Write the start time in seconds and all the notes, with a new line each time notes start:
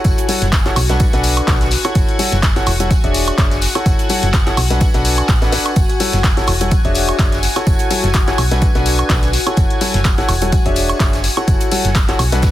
Already playing: E4 F#4 A4 C#5 F#5 G#5
0.04 F#1, kick, closed hi-hat, tambourine
0.17 closed hi-hat, tambourine
0.28 E4 F#4 A4 C#5 F#5, open hi-hat, tambourine, high conga
0.42 F#1, snare, closed hi-hat, tambourine
0.52 kick, snare, clap, closed hi-hat, tambourine
0.66 E4 F#4 A4 C#5 F#5, snare, clap, closed hi-hat, tambourine
0.76 B1, open hi-hat, tambourine, high woodblock
0.89 D4 F#4 A4 B4 F#5, snare, closed hi-hat, tambourine, high conga
1.00 kick, closed hi-hat, tambourine
1.13 B1 D4 F#4 A4 B4 F#5, snare, closed hi-hat, tambourine
1.23 open hi-hat, tambourine
1.37 closed hi-hat, tambourine, high woodblock
1.47 B1 D4 F#4 A4 B4 F#5, kick, snare, clap, closed hi-hat, tambourine
1.61 snare, closed hi-hat, tambourine
1.71 snare, open hi-hat, tambourine
1.84 E4 F#4 A4 C#5 F#5, closed hi-hat, tambourine, high woodblock
1.95 F#1, kick, closed hi-hat, tambourine
2.08 closed hi-hat, tambourine
2.19 E4 F#4 A4 C#5 F#5, open hi-hat, tambourine, high conga
2.31 F#1, snare, closed hi-hat, tambourine
2.43 kick, snare, clap, closed hi-hat, tambourine
2.56 E4 F#4 A4 C#5 F#5, snare, closed hi-hat, tambourine
2.66 E1, open hi-hat, tambourine, high woodblock
2.80 E4 F#4 A4 C#5 F#5, closed hi-hat, tambourine, high conga
2.91 kick, closed hi-hat, tambourine
3.04 E1 D4 F#4 G#4 C#5 E5, closed hi-hat, tambourine
3.14 open hi-hat, tambourine
3.28 closed hi-hat, tambourine, high woodblock
3.38 F#1 D4 C#5, kick, snare, clap, closed hi-hat, tambourine
3.51 snare, closed hi-hat, tambourine
3.62 snare, open hi-hat, tambourine
3.75 E4 F#4 A4 C#5 F#5, closed hi-hat, tambourine, high woodblock
3.86 F#1, kick, closed hi-hat, tambourine
3.99 closed hi-hat, tambourine
4.09 E4 F#4 A4 C#5 F#5, open hi-hat, tambourine, high conga
4.22 F#1, snare, closed hi-hat, tambourine
4.33 kick, snare, clap, closed hi-hat, tambourine
4.46 E4 F#4 A4 C#5 F#5, snare, clap, closed hi-hat, tambourine
4.57 B1, open hi-hat, tambourine, high woodblock
4.70 D4 F#4 A4 B4 F#5, snare, closed hi-hat, tambourine, high conga
4.81 kick, closed hi-hat, tambourine
4.93 B1 D4 F#4 A4 B4 F#5, snare, closed hi-hat, tambourine
5.05 open hi-hat, tambourine
5.18 closed hi-hat, tambourine, high woodblock
5.28 A1, kick, snare, clap, closed hi-hat, tambourine
5.42 D4 F#4 A4 B4 F#5, snare, closed hi-hat, tambourine
5.52 D4 F#4 A4 B4 F#5, snare, open hi-hat, tambourine
5.66 closed hi-hat, tambourine, high woodblock
5.76 F#1, kick, closed hi-hat, tambourine
5.90 closed hi-hat, tambourine
6.00 E4 F#4 A4 C#5 F#5, open hi-hat, tambourine, high conga
6.13 F#1, snare, closed hi-hat, tambourine
6.24 kick, snare, clap, closed hi-hat, tambourine
6.37 E4 F#4 A4 C#5 F#5, snare, closed hi-hat, tambourine
6.47 E1, open hi-hat, tambourine, high woodblock
6.61 E4 F#4 A4 C#5 F#5, closed hi-hat, tambourine, high conga
6.71 kick, closed hi-hat, tambourine
6.85 E1 D4 F#4 G#4 C#5 E5, closed hi-hat, tambourine
6.95 open hi-hat, tambourine
7.09 closed hi-hat, tambourine, high woodblock
7.19 F#1 D4 F#4 G#4 C#5, kick, snare, clap, closed hi-hat, tambourine
7.32 snare, closed hi-hat, tambourine
7.43 snare, open hi-hat, tambourine
7.56 E4 F#4 A4 C#5 F#5, closed hi-hat, tambourine, high woodblock
7.67 F#1, kick, closed hi-hat, tambourine
7.79 closed hi-hat, tambourine
7.90 E4 F#4 A4 C#5 F#5, open hi-hat, tambourine, high conga
8.04 F#1, snare, closed hi-hat, tambourine
8.14 kick, snare, clap, closed hi-hat, tambourine
8.27 E4 F#4 A4 C#5 F#5, snare, clap, closed hi-hat, tambourine
8.38 B1, open hi-hat, tambourine, high woodblock
8.51 D4 F#4 A4 B4 F#5, snare, closed hi-hat, tambourine, high conga
8.62 kick, closed hi-hat, tambourine
8.75 B1 D4 F#4 A4 B4 F#5, snare, closed hi-hat, tambourine
8.86 open hi-hat, tambourine
8.98 closed hi-hat, tambourine, high woodblock
9.10 B1 D4 F#4 A4 B4 F#5, kick, snare, clap, closed hi-hat, tambourine
9.22 snare, closed hi-hat, tambourine
9.33 snare, open hi-hat, tambourine
9.47 E4 F#4 A4 C#5 F#5, closed hi-hat, tambourine, high woodblock
9.57 F#1, kick, closed hi-hat, tambourine
9.70 closed hi-hat, tambourine
9.81 E4 F#4 A4 C#5 F#5, open hi-hat, tambourine, high conga
9.94 F#1, snare, closed hi-hat, tambourine
10.05 kick, snare, clap, closed hi-hat, tambourine
10.18 E4 F#4 A4 C#5 F#5, snare, closed hi-hat, tambourine
10.28 E1, open hi-hat, tambourine, high woodblock
10.41 E4 F#4 A4 C#5 F#5, closed hi-hat, tambourine, high conga
10.52 kick, closed hi-hat, tambourine
10.66 E1 D4 F#4 G#4 C#5 E5, closed hi-hat, tambourine
10.76 open hi-hat, tambourine
10.89 closed hi-hat, tambourine, high woodblock
11.00 F#1 D4 F#4 G#4 E5, kick, snare, clap, closed hi-hat, tambourine
11.13 snare, closed hi-hat, tambourine
11.23 snare, open hi-hat, tambourine
11.37 E4 F#4 A4 C#5 F#5, closed hi-hat, tambourine, high woodblock
11.47 F#1, kick, closed hi-hat, tambourine
11.61 closed hi-hat, tambourine
11.71 E4 F#4 A4 C#5 F#5, open hi-hat, tambourine, high conga
11.84 F#1, snare, closed hi-hat, tambourine
11.95 kick, snare, clap, closed hi-hat, tambourine
12.08 E4 F#4 A4 C#5 F#5, snare, clap, closed hi-hat, tambourine
12.19 B1, open hi-hat, tambourine, high woodblock
12.32 D4 F#4 A4 B4 F#5, snare, closed hi-hat, tambourine, high conga
12.42 kick, snare, closed hi-hat, tambourine